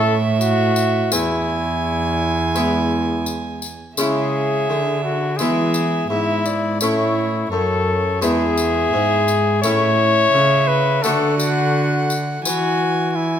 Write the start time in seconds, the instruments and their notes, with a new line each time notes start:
Already playing: harpsichord A2 A3 C#4 E4, cello A2, cornet A4, violin E5
0.41 cornet F#4, tambourine
0.76 tambourine
1.12 harpsichord E2, cello E2, cornet E4, violin G#5, tambourine
2.55 harpsichord G#3 B3 E4, tambourine
3.26 tambourine
3.62 tambourine
3.97 harpsichord C#3 G#3 C#4 E4, cello C#3, cornet G#4, violin E5, tambourine
4.69 cello D3, harpsichord D3
5.03 cornet F#4
5.37 cello E3, harpsichord E3 G#3 B3 E4, cornet G#4, violin E5, tambourine
5.74 tambourine
6.09 cello G#2, harpsichord G#2, cornet E4, violin E5
6.46 violin D5, tambourine
6.80 cello A2, harpsichord A2 A3 C#4 E4, cornet E4, violin C#5, tambourine
7.50 cello F#2, harpsichord F#2, cornet A4, violin C#5
8.22 harpsichord E2 G#3 B3 E4, cello E2, cornet G#4, violin E5, tambourine
8.57 tambourine
8.92 cello G#2, harpsichord G#2
9.28 tambourine
9.62 cello A2, harpsichord A2 A3 C#4 E4, cornet C#5, violin E5, tambourine
10.34 cello C#3, harpsichord C#3
10.68 cornet B4
11.02 cello D3, harpsichord D3 A3 D4 F#4, cornet A4, violin F#5, tambourine
11.37 cornet F#4, tambourine
12.10 tambourine
12.44 cello E3, harpsichord E3, cornet F#4, violin G#5, tambourine
13.16 cornet E4, violin G#5